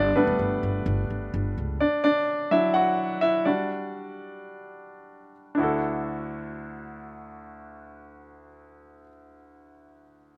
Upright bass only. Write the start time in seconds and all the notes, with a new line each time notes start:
Already playing: G1
0.27 G1
0.39 G1
0.63 G1
0.86 G1
1.10 G1
1.34 G1
1.58 C#2